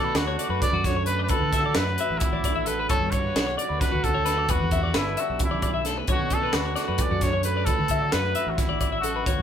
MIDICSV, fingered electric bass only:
0, 0, Header, 1, 2, 480
1, 0, Start_track
1, 0, Key_signature, 2, "major"
1, 0, Tempo, 454890
1, 1378, Time_signature, 7, 3, 24, 8
1, 9941, End_track
2, 0, Start_track
2, 0, Title_t, "Fingered electric bass"
2, 0, Program_c, 0, 33
2, 0, Note_on_c, 0, 47, 77
2, 110, Note_off_c, 0, 47, 0
2, 155, Note_on_c, 0, 38, 84
2, 370, Note_off_c, 0, 38, 0
2, 519, Note_on_c, 0, 42, 77
2, 630, Note_off_c, 0, 42, 0
2, 763, Note_on_c, 0, 42, 94
2, 1367, Note_off_c, 0, 42, 0
2, 1367, Note_on_c, 0, 38, 96
2, 1475, Note_off_c, 0, 38, 0
2, 1496, Note_on_c, 0, 50, 76
2, 1809, Note_off_c, 0, 50, 0
2, 1852, Note_on_c, 0, 42, 86
2, 2063, Note_off_c, 0, 42, 0
2, 2216, Note_on_c, 0, 33, 77
2, 2322, Note_off_c, 0, 33, 0
2, 2445, Note_on_c, 0, 33, 84
2, 3058, Note_off_c, 0, 33, 0
2, 3058, Note_on_c, 0, 31, 94
2, 3163, Note_off_c, 0, 31, 0
2, 3172, Note_on_c, 0, 43, 77
2, 3487, Note_off_c, 0, 43, 0
2, 3547, Note_on_c, 0, 35, 81
2, 3752, Note_off_c, 0, 35, 0
2, 3903, Note_on_c, 0, 38, 74
2, 4007, Note_off_c, 0, 38, 0
2, 4153, Note_on_c, 0, 38, 94
2, 4737, Note_on_c, 0, 28, 93
2, 4753, Note_off_c, 0, 38, 0
2, 4844, Note_off_c, 0, 28, 0
2, 4872, Note_on_c, 0, 40, 81
2, 5179, Note_off_c, 0, 40, 0
2, 5223, Note_on_c, 0, 31, 81
2, 5430, Note_off_c, 0, 31, 0
2, 5589, Note_on_c, 0, 35, 80
2, 5690, Note_off_c, 0, 35, 0
2, 5835, Note_on_c, 0, 35, 89
2, 6347, Note_off_c, 0, 35, 0
2, 6411, Note_on_c, 0, 35, 93
2, 6520, Note_off_c, 0, 35, 0
2, 6540, Note_on_c, 0, 47, 73
2, 6851, Note_off_c, 0, 47, 0
2, 6898, Note_on_c, 0, 38, 82
2, 7107, Note_off_c, 0, 38, 0
2, 7265, Note_on_c, 0, 42, 70
2, 7366, Note_off_c, 0, 42, 0
2, 7491, Note_on_c, 0, 42, 91
2, 8094, Note_off_c, 0, 42, 0
2, 8094, Note_on_c, 0, 38, 90
2, 8200, Note_off_c, 0, 38, 0
2, 8217, Note_on_c, 0, 50, 80
2, 8528, Note_off_c, 0, 50, 0
2, 8581, Note_on_c, 0, 42, 85
2, 8786, Note_off_c, 0, 42, 0
2, 8931, Note_on_c, 0, 33, 74
2, 9037, Note_off_c, 0, 33, 0
2, 9171, Note_on_c, 0, 33, 94
2, 9774, Note_off_c, 0, 33, 0
2, 9774, Note_on_c, 0, 31, 95
2, 9877, Note_off_c, 0, 31, 0
2, 9895, Note_on_c, 0, 43, 77
2, 9941, Note_off_c, 0, 43, 0
2, 9941, End_track
0, 0, End_of_file